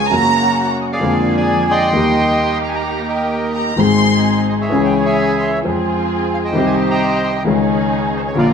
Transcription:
0.10 0.98 F#2 medium
0.10 0.97 C#3 medium
0.10 0.98 F#3 medium
0.10 0.97 A#3 medium
0.10 0.98 A#3 soft
0.10 0.97 C#4 medium
0.10 0.97 F#4 medium
0.10 0.99 F#4 medium
0.10 0.67 A#5 loud
0.81 0.86 D#5 medium
0.92 1.79 G#4 medium
0.92 1.36 D5 medium
0.92 1.34 F5 medium
1.00 1.88 F2 medium
1.00 1.88 D3 soft
1.00 1.88 F3 medium
1.00 1.88 G#3 medium
1.00 1.88 A#3 medium
1.00 1.89 A#3 medium
1.00 1.88 D4 medium
1.00 1.89 F4 medium
1.00 1.89 G#4 medium
1.37 1.90 D5 medium
1.37 1.72 G#5 loud
1.71 2.58 D#5 medium
1.71 2.58 G5 medium
1.71 2.58 C6 loud
1.92 3.69 D#2 medium
1.92 3.69 D#3 medium
1.92 3.69 G3 medium
1.92 3.69 A#3 medium
1.92 3.69 A#3 soft
1.92 3.69 D#4 medium
1.92 3.69 G4 medium
1.92 3.70 G4 medium
2.64 2.70 A#5 medium
2.68 2.75 G#5 medium
2.76 3.09 A#5 medium
3.09 3.74 A#4 medium
3.09 3.74 D#5 medium
3.09 3.52 G5 medium
3.54 3.76 A#5 medium
3.76 4.66 G#1 medium
3.76 4.66 G#2 medium
3.76 4.65 D#3 medium
3.76 4.66 G#3 soft
3.76 4.66 C4 medium
3.76 4.67 C4 soft
3.76 4.66 D#4 medium
3.76 4.66 G#4 medium
3.76 4.67 G#4 medium
3.76 4.36 C6 loud
4.49 4.54 D#5 medium
4.61 5.49 G#4 medium
4.61 5.04 C#5 medium
4.61 4.82 E5 medium
4.69 5.59 C#2 medium
4.69 5.59 C#3 medium
4.69 5.58 E3 medium
4.69 5.58 G#3 soft
4.69 5.58 C#4 medium
4.69 5.59 C#4 medium
4.69 5.58 E4 medium
4.69 5.58 G#4 medium
4.73 5.60 G#4 medium
4.85 4.94 G5 medium
5.05 5.59 C#5 medium
5.05 5.59 E5 medium
5.05 5.39 G#5 loud
5.41 5.51 C6 medium
5.62 6.51 F2 medium
5.62 6.51 F3 medium
5.62 6.50 G#3 medium
5.62 6.50 C4 medium
5.62 6.51 C4 soft
5.62 6.50 F4 medium
5.62 6.50 G#4 medium
5.67 6.52 G#4 medium
6.34 6.38 F5 medium
6.44 7.31 C5 medium
6.44 6.90 D#5 medium
6.44 6.66 G5 medium
6.53 7.42 C2 medium
6.53 7.42 C3 medium
6.53 7.41 D#3 medium
6.53 7.42 G3 medium
6.53 7.41 C4 medium
6.53 7.42 C4 medium
6.53 7.41 D#4 medium
6.53 7.41 G4 medium
6.57 7.43 G4 medium
6.66 6.77 G#5 medium
6.91 7.43 D#5 medium
6.91 7.43 G5 medium
6.91 7.25 A#5 loud
7.24 7.34 C6 medium
7.44 8.33 C#2 medium
7.44 8.33 C#3 medium
7.44 8.32 D#3 medium
7.44 8.33 G#3 soft
7.44 8.32 C#4 medium
7.44 8.33 C#4 medium
7.44 8.32 D#4 medium
7.44 8.33 G#4 medium
7.49 8.34 G#4 medium
8.17 8.21 C5 medium
8.27 8.37 C#5 medium
8.35 8.53 A#1 medium
8.35 8.53 A#2 medium
8.35 8.53 D3 medium
8.35 8.53 F3 medium
8.35 8.53 A#3 medium
8.35 8.53 F4 medium
8.35 8.53 A#4 medium
8.35 8.49 D5 medium
8.39 8.53 F4 medium

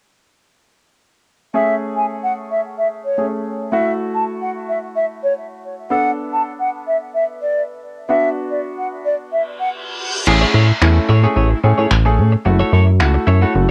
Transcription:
1.54 3.15 A3 medium
1.54 3.15 C#4 medium
1.54 3.15 G#4 medium
1.54 1.75 E5 medium
1.96 2.06 G#5 medium
2.23 2.33 F#5 medium
2.51 2.60 E5 medium
2.78 2.88 E5 medium
3.05 3.26 C#5 medium
3.18 3.71 A3 soft
3.18 3.73 C#4 soft
3.18 3.73 G#4 soft
3.72 5.87 A3 medium
3.72 5.87 E4 medium
3.72 5.87 F#4 medium
3.72 3.93 E5 medium
4.14 4.24 A5 medium
4.42 4.51 F#5 medium
4.69 4.79 E5 medium
4.96 5.06 E5 medium
5.24 5.33 C#5 medium
5.90 8.05 B3 medium
5.90 8.05 D4 medium
5.90 8.05 A4 medium
5.90 6.11 F#5 medium
6.33 6.42 A5 medium
6.60 6.69 F#5 medium
6.87 6.97 E5 medium
7.14 7.24 E5 medium
7.42 7.62 D5 medium
8.09 10.23 B3 medium
8.09 10.23 D4 medium
8.09 10.24 F#4 medium
8.09 8.29 E5 medium
8.51 8.60 D5 medium
8.78 8.88 F#5 medium
9.05 9.15 D5 medium
9.18 reverse cymbal medium
9.33 9.42 E5 medium
9.60 9.69 F#5 medium
10.27 10.45 A1 loud
10.27 10.60 A3 medium
10.27 10.60 C#4 medium
10.27 10.60 G#4 medium
10.27 muted clean electric guitar stroke soft
10.27 crash medium
10.41 10.53 E4 medium
10.41 10.54 G#4 medium
10.41 10.54 C#5 medium
10.54 10.72 A2 loud
10.54 10.72 E4 medium
10.54 10.68 G#4 medium
10.54 10.68 C#5 medium
10.69 muted clean electric guitar stroke soft
10.81 10.99 E2 medium
10.81 11.06 A3 medium
10.81 11.06 C#4 medium
10.81 11.07 E4 loud
10.81 finger snap loud
10.81 muted clean electric guitar stroke soft
10.96 muted clean electric guitar stroke soft
11.09 11.27 A2 medium
11.09 11.23 E4 medium
11.09 11.23 G#4 medium
11.09 11.22 C#5 medium
11.23 11.48 A3 medium
11.23 11.48 C#4 medium
11.23 11.35 E4 medium
11.23 11.48 G#4 loud
11.23 11.35 G#4 medium
11.23 11.36 C#5 medium
11.36 11.54 A1 loud
11.36 11.58 E4 medium
11.36 11.50 G#4 medium
11.36 11.49 C#5 medium
11.51 muted clean electric guitar stroke medium
11.63 11.73 A2 loud
11.63 11.88 A3 medium
11.63 11.88 C#4 medium
11.63 11.88 G#4 medium
11.63 muted clean electric guitar stroke soft
11.78 11.86 A2 medium
11.78 11.89 E4 soft
11.78 11.90 G#4 medium
11.78 11.90 C#5 medium
11.91 12.20 A1 loud
11.91 finger snap loud
11.91 muted clean electric guitar stroke soft
12.05 12.30 A3 medium
12.05 12.30 C#4 medium
12.05 12.30 G#4 medium
12.05 muted clean electric guitar stroke soft
12.18 12.36 A2 medium
12.32 muted clean electric guitar stroke soft
12.45 12.63 F#1 loud
12.45 12.78 A3 medium
12.45 12.78 E4 medium
12.45 12.78 F#4 medium
12.45 muted clean electric guitar stroke soft
12.60 12.71 E4 medium
12.60 12.72 A4 medium
12.60 12.72 C#5 medium
12.72 13.02 F#2 loud
12.72 12.90 E4 medium
12.72 12.87 A4 medium
12.72 12.86 C#5 medium
12.87 muted clean electric guitar stroke soft
13.00 13.18 C#2 medium
13.00 13.25 A3 medium
13.00 13.25 E4 medium
13.00 13.25 F#4 loud
13.00 finger snap loud
13.00 muted clean electric guitar stroke soft
13.14 muted clean electric guitar stroke medium
13.27 13.45 F#2 medium
13.27 13.41 E4 medium
13.27 13.41 A4 medium
13.27 13.40 C#5 medium
13.41 13.66 A3 medium
13.41 13.66 E4 medium
13.41 13.53 E4 soft
13.41 13.66 F#4 medium
13.41 13.54 A4 medium
13.41 13.54 C#5 medium
13.54 13.71 F#1 loud
13.54 muted clean electric guitar stroke soft

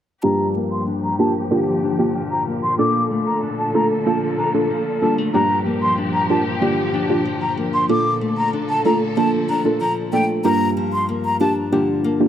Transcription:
0.23 2.79 G2 medium
0.23 10.41 A#2 medium
0.23 2.76 F3 medium
0.23 0.82 A#3 medium
0.23 0.82 D4 medium
0.23 0.82 F4 medium
0.23 2.76 G4 medium
0.23 0.82 G4 loud
0.23 0.48 A#5 medium
0.55 1.19 A#3 medium
0.71 0.83 C6 medium
0.87 1.83 D4 medium
1.03 1.15 A#5 medium
1.19 1.32 A#3 medium
1.19 2.46 A#3 medium
1.19 1.33 D4 medium
1.19 1.33 F4 medium
1.19 1.33 G4 medium
1.19 1.31 A5 medium
1.51 2.78 D3 medium
1.51 1.95 A#3 medium
1.51 1.95 D4 medium
1.51 1.95 F4 medium
1.51 1.95 G4 loud
1.83 3.42 D4 medium
1.99 2.12 A#3 medium
1.99 2.12 D4 medium
1.99 2.12 F4 medium
1.99 2.13 G4 medium
2.15 4.06 F3 medium
2.31 2.43 A#5 medium
2.47 3.10 A#3 medium
2.63 2.75 C6 medium
2.78 5.34 A#2 medium
2.78 5.32 D3 medium
2.78 3.37 A#3 medium
2.78 3.37 D4 medium
2.78 3.37 F4 medium
2.78 3.38 A4 loud
2.78 5.32 A4 medium
2.78 3.03 D6 loud
3.11 3.73 A3 medium
3.27 3.39 A#5 medium
3.43 4.38 D4 medium
3.58 3.71 A5 medium
3.74 5.02 A3 medium
3.74 3.88 A#3 medium
3.74 3.88 D4 medium
3.74 3.88 F4 medium
3.74 3.88 A4 medium
3.74 3.87 A#5 medium
4.06 4.70 F3 medium
4.06 4.50 A#3 loud
4.06 4.50 D4 medium
4.06 4.51 F4 medium
4.06 4.51 A4 loud
4.06 4.18 A5 medium
4.38 5.98 D4 medium
4.38 4.50 A#5 medium
4.54 4.98 A#3 medium
4.54 4.98 D4 medium
4.54 4.98 F4 medium
4.54 4.98 A4 medium
4.70 7.25 F3 medium
5.02 5.18 G3 medium
5.02 5.31 A#3 medium
5.02 5.32 D4 medium
5.02 5.32 F4 medium
5.02 5.32 A4 medium
5.02 5.14 A5 medium
5.18 5.40 A3 medium
5.34 7.89 G2 medium
5.34 7.87 F3 medium
5.34 5.93 A#3 medium
5.34 5.93 D4 medium
5.34 5.93 F4 medium
5.34 7.87 G4 medium
5.34 5.93 G4 loud
5.34 5.58 A#5 medium
5.66 6.29 A#3 medium
5.82 5.94 C6 medium
5.98 6.93 D4 medium
6.14 6.26 A#5 medium
6.30 6.43 A#3 medium
6.30 7.57 A#3 medium
6.30 6.43 D4 medium
6.30 6.43 F4 medium
6.30 6.43 G4 medium
6.30 6.42 A5 medium
6.61 7.89 D3 medium
6.61 7.06 A#3 medium
6.61 7.06 D4 medium
6.61 7.06 F4 medium
6.61 7.06 G4 loud
6.94 8.53 D4 medium
7.09 7.23 A#3 medium
7.09 7.23 D4 medium
7.09 7.23 F4 medium
7.09 7.23 G4 medium
7.25 9.17 F3 medium
7.42 7.54 A#5 medium
7.57 8.21 A#3 medium
7.74 7.86 C6 medium
7.89 10.45 A#2 medium
7.89 10.42 D3 medium
7.89 8.48 A#3 medium
7.89 8.48 D4 medium
7.89 8.48 F4 medium
7.89 10.42 A4 medium
7.89 8.48 A4 loud
7.89 8.14 D6 medium
8.21 8.84 A3 medium
8.37 8.50 A#5 medium
8.53 9.49 D4 medium
8.69 8.81 A5 medium
8.85 10.12 A3 medium
8.85 8.99 A#3 medium
8.85 8.99 D4 medium
8.85 8.99 F4 medium
8.85 8.99 A4 medium
8.85 8.97 A#5 medium
9.17 9.80 F3 medium
9.17 9.61 A#3 medium
9.17 9.61 D4 medium
9.17 9.61 F4 medium
9.17 9.61 A4 loud
9.17 9.29 A5 medium
9.49 11.40 D4 medium
9.49 9.61 A#5 medium
9.65 10.09 A#3 medium
9.65 10.09 D4 medium
9.65 10.09 F4 medium
9.65 10.09 A4 medium
9.81 10.76 F3 medium
9.81 9.93 A#5 medium
10.13 10.51 A3 medium
10.13 10.42 A#3 medium
10.13 10.42 D4 medium
10.13 10.42 F4 medium
10.13 10.42 A4 medium
10.13 10.25 G5 medium
10.45 12.28 G2 medium
10.45 11.03 A#3 medium
10.45 11.03 D4 medium
10.45 11.04 F4 medium
10.45 11.04 G4 loud
10.45 10.69 A#5 loud
10.77 12.28 F3 medium
10.93 11.05 C6 medium
11.09 12.04 A#3 medium
11.25 11.37 A#5 medium
11.40 11.54 A#3 medium
11.40 11.54 D4 medium
11.40 12.28 D4 medium
11.40 11.54 F4 medium
11.40 11.54 G4 medium
11.40 11.53 A5 medium
11.72 12.28 D3 medium
11.72 12.16 A#3 loud
11.72 12.16 D4 medium
11.72 12.17 F4 medium
11.72 12.17 G4 loud
12.04 12.28 A#3 medium
12.20 12.28 A#3 medium
12.20 12.28 D4 medium
12.20 12.28 F4 medium
12.20 12.28 G4 medium

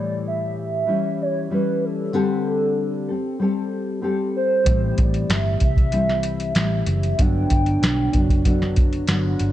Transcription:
0.00 0.88 A2 medium
0.00 0.85 E3 medium
0.00 0.87 G3 medium
0.00 0.88 E4 medium
0.00 0.26 D5 medium
0.28 0.56 E5 medium
0.59 1.23 E5 medium
0.86 1.49 E3 medium
0.86 1.51 G3 medium
0.86 1.51 C#4 medium
0.86 1.51 E4 medium
1.22 1.52 C#5 loud
1.50 2.12 E3 medium
1.50 2.13 G3 medium
1.50 2.13 C#4 medium
1.50 2.14 E4 medium
1.50 1.86 B4 medium
1.85 2.47 A4 medium
2.13 3.08 D3 medium
2.13 3.11 G3 medium
2.13 3.11 C4 medium
2.13 3.10 G4 medium
2.13 3.08 A4 medium
2.48 3.06 A4 medium
3.08 3.40 C4 soft
3.08 3.40 G4 soft
3.08 3.40 A4 medium
3.39 4.01 G3 medium
3.39 4.02 C4 medium
3.39 4.03 G4 medium
3.39 4.04 A4 medium
4.02 4.66 G3 medium
4.02 4.67 C4 medium
4.02 4.67 G4 medium
4.02 4.70 A4 medium
4.36 5.03 C5 medium
4.64 4.92 A1 medium
4.64 5.92 A2 medium
4.64 5.90 E3 medium
4.64 5.92 G3 medium
4.64 5.92 C4 medium
4.64 kick loud
4.64 closed hi-hat medium
4.68 5.93 E4 medium
4.98 5.24 A1 medium
4.98 5.33 D5 medium
4.98 kick medium
4.98 closed hi-hat medium
5.14 closed hi-hat soft
5.30 5.55 G1 loud
5.30 5.62 E5 medium
5.30 snare loud
5.30 closed hi-hat medium
5.60 6.52 C2 medium
5.60 kick medium
5.60 closed hi-hat medium
5.64 6.54 E5 medium
5.77 kick medium
5.77 closed hi-hat soft
5.91 6.54 E3 medium
5.91 6.56 G3 soft
5.91 6.55 C4 medium
5.91 6.56 E4 medium
5.91 closed hi-hat medium
6.09 snare soft
6.23 closed hi-hat medium
6.40 closed hi-hat soft
6.55 6.81 A1 medium
6.55 7.18 E3 medium
6.55 7.18 G3 medium
6.55 7.19 C4 medium
6.55 7.19 E4 medium
6.55 snare loud
6.55 closed hi-hat medium
6.59 7.23 E5 medium
6.86 7.13 F#1 medium
6.86 closed hi-hat medium
7.03 closed hi-hat soft
7.18 7.45 G1 medium
7.18 8.13 G2 medium
7.18 8.14 D3 medium
7.18 8.14 F#3 medium
7.18 8.13 B3 medium
7.18 8.11 D4 medium
7.18 8.47 G5 loud
7.18 kick loud
7.18 closed hi-hat loud
7.50 7.76 G1 medium
7.50 kick medium
7.50 closed hi-hat medium
7.66 closed hi-hat soft
7.82 8.08 B1 medium
7.82 snare loud
7.82 closed hi-hat medium
8.13 9.05 F#1 medium
8.13 8.44 F#3 soft
8.13 8.45 B3 soft
8.13 8.45 D4 medium
8.13 kick medium
8.13 closed hi-hat medium
8.29 kick medium
8.29 closed hi-hat soft
8.44 9.07 D3 medium
8.44 9.08 F#3 medium
8.44 9.08 B3 medium
8.44 9.09 D4 medium
8.44 kick medium
8.44 closed hi-hat medium
8.62 snare soft
8.76 kick medium
8.76 closed hi-hat medium
8.93 closed hi-hat soft
9.07 9.34 G1 medium
9.07 9.52 D3 medium
9.07 9.52 F#3 medium
9.07 9.52 B3 medium
9.07 9.52 D4 medium
9.07 snare loud
9.07 closed hi-hat medium
9.39 9.52 G1 medium
9.39 closed hi-hat medium

